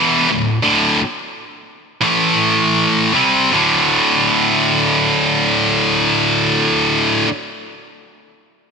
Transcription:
Already playing: E2 B2 E3
0.29 D2 A2
0.63 D2 A2 D3
2.02 A2 E3 A3
3.13 C3 G3 C4
3.50 D2 A2 D3

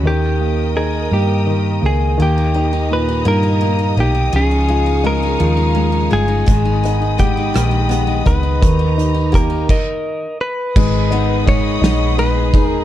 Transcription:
0.02 D#2 D#3 A#4 D#5 G5 D#6
0.07 G4
0.40 A#3
0.77 D#4 G#4 A#4
1.11 G2 A#3 G4
1.47 D#3
1.81 C#2 A#3
1.86 G#4
2.18 D#2 D#3 A#3 G4 D#5 A#5 D#6
2.22 G4
2.38 D#4
2.54 A#3 D#4
2.73 D#4
2.91 A#2 B4
3.09 D#4
3.25 G2 A#3 D#4 A#4
3.43 D#4
3.61 A#3
3.79 D#4
3.97 B1 A#3 D#4 G4
4.15 D#4
4.33 C#2 C#3 F3 G#4 F5 C#6
4.51 D#4
4.68 G#3 F4
4.86 D#4
5.04 G#3 A#4
5.23 D#4
5.40 D#2 F3 F4
5.57 D#4
5.75 G#3
5.92 D#4
6.11 G1 G#3 F4 G#4
6.28 D#4
6.46 G#1 D#3 G#3 D#5 B5 D#6, kick, closed hi-hat
6.65 D#4
6.83 B3 D#4, closed hi-hat
7.02 D#4
7.18 G#3 B3 G4, kick, closed hi-hat
7.37 D#4
7.54 A#1 D#3 D#4, cross-stick, closed hi-hat
7.71 D#4
7.89 G#3 B3, closed hi-hat
8.07 D#4
8.26 C#2 B3 D#4 B4, kick, closed hi-hat
8.43 D#4
8.61 D#2 D#3 G4 A#5, kick, closed hi-hat
8.79 D#4
8.98 D#4, closed hi-hat
9.14 D#4
9.32 A#3 G4 A#4, kick, closed hi-hat
9.50 D#4
9.69 A#4 D#5, kick, crash
10.41 B4
10.75 G#1 D#3 G#3 G#4 D#5 B5 D#6, kick, crash
11.11 B3 D#4, ride
11.46 G#3 D#4 C#5, kick, ride
11.81 A#1 B3 D#4, snare, ride
12.18 G#3 D#4 B4, ride
12.54 E1 D#4 G#4, kick, ride
12.66 A#4

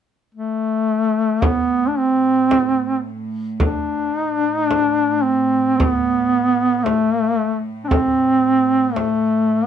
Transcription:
0.34 A3
1.42 A2 B3, frame drum
1.88 D4
1.98 C4
2.51 frame drum
3.60 D4, frame drum
4.18 D#4
4.33 D4
4.50 D#4
4.66 D4
4.71 frame drum
5.22 C4
5.77 B3, frame drum
6.84 A3, frame drum
7.84 D4
7.88 C4, frame drum
8.94 A3, frame drum

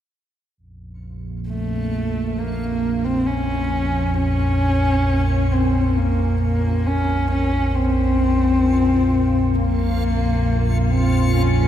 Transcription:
0.57 A#1 F2 C#4 F4 C#7
0.89 F5
1.48 A3
2.18 A#4
2.38 A#3
3.04 C4
3.26 C#4
4.17 C#4
5.51 C4
5.97 A#3
6.42 A#3
6.86 C#4
7.31 C#4
7.74 C4
9.55 A#3
10.91 C4
11.36 C#4

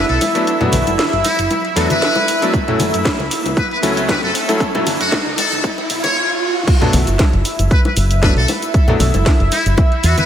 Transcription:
Already playing: E4 E5, riser
0.08 B1 A4, closed hi-hat
0.21 open hi-hat, high bongo, cabasa
0.34 F#3 A3 B3 D4 A4, closed hi-hat, cabasa
0.47 closed hi-hat, cabasa
0.60 F#3 A3 B3 D4 A4, closed hi-hat, high bongo, low conga
0.72 B1, open hi-hat, high conga, cabasa
0.87 F#1, closed hi-hat, high bongo, cabasa
0.99 snare, closed hi-hat, cabasa
1.13 F#1, closed hi-hat
1.25 E4, open hi-hat, high bongo, cabasa
1.39 F#1, closed hi-hat, cabasa
1.51 closed hi-hat, high bongo, cabasa
1.65 closed hi-hat
1.76 E2 F#3 A3 B3 D4 F#4 A4, open hi-hat, cabasa
1.90 B4, closed hi-hat, high bongo, high conga, cabasa
2.02 snare, open hi-hat, cabasa
2.16 closed hi-hat, high bongo
2.28 open hi-hat, cabasa
2.41 F#3 A3 B3 D4 A4, closed hi-hat, cabasa
2.54 kick, closed hi-hat, high bongo, cabasa
2.68 F#3 A3 C#4 E4 A4, closed hi-hat, low conga
2.79 F#1, open hi-hat, high bongo, high conga, cabasa
2.94 F#2, closed hi-hat, cabasa
3.05 kick, snare, closed hi-hat, cabasa
3.19 C#2, closed hi-hat, high bongo
3.31 open hi-hat, cabasa
3.45 C#2, closed hi-hat, high bongo, cabasa
3.57 B4, kick, closed hi-hat, cabasa
3.71 B4, closed hi-hat
3.82 C#2 F#3 A3 C#4 E4 A4, open hi-hat, high bongo, cabasa
3.97 closed hi-hat, cabasa
4.09 B4, kick, snare, closed hi-hat, high bongo, cabasa
4.22 F#1 A4, closed hi-hat
4.35 open hi-hat, cabasa
4.48 F#3 A3 C#4 E4 A4, closed hi-hat, high bongo, cabasa
4.60 kick, closed hi-hat, cabasa
4.75 F#3 A3 C#4 E4 A4, closed hi-hat, high bongo, low conga
4.86 F#1, open hi-hat, high conga, cabasa
5.00 F#2 F#4, closed hi-hat, cabasa
5.12 kick, snare, closed hi-hat, high bongo, cabasa
5.26 C#2, closed hi-hat
5.38 A4, open hi-hat, high bongo, cabasa
5.52 C#2, closed hi-hat, cabasa
5.64 kick, closed hi-hat, cabasa
5.78 closed hi-hat, high bongo
5.90 B1, open hi-hat, cabasa
6.04 C#5, closed hi-hat, high bongo, high conga, cabasa
6.67 E4 E5, kick, closed hi-hat, crash, cabasa
6.81 F#3 A3 B3 D4 A4, closed hi-hat, low conga
6.93 B1, open hi-hat, high bongo, high conga, cabasa
7.07 F#1, closed hi-hat, cabasa
7.19 kick, snare, closed hi-hat, high bongo, cabasa
7.33 F#1, closed hi-hat
7.45 open hi-hat, cabasa
7.59 F#1, closed hi-hat, high bongo, cabasa
7.71 B4, kick, closed hi-hat, cabasa
7.85 B4, closed hi-hat, high bongo
7.97 F#1, open hi-hat, cabasa
8.11 closed hi-hat, cabasa
8.22 F#3 A3 B3 D4 A4 B4, kick, snare, closed hi-hat, high bongo, cabasa
8.36 B1 A4, closed hi-hat
8.48 open hi-hat, high bongo, cabasa
8.62 closed hi-hat, cabasa
8.74 kick, closed hi-hat, cabasa
8.88 F#3 A3 B3 D4 A4, closed hi-hat, high bongo, low conga
9.00 B1, open hi-hat, high conga, cabasa
9.14 F#1, closed hi-hat, high bongo, cabasa
9.26 kick, snare, closed hi-hat, cabasa
9.40 F#1, closed hi-hat
9.52 E4, open hi-hat, high bongo, cabasa
9.66 F#1, closed hi-hat, cabasa
9.77 kick, closed hi-hat, high bongo, cabasa
9.92 closed hi-hat
10.04 E2 F#4, open hi-hat, cabasa
10.17 B4, closed hi-hat, high bongo, high conga, cabasa

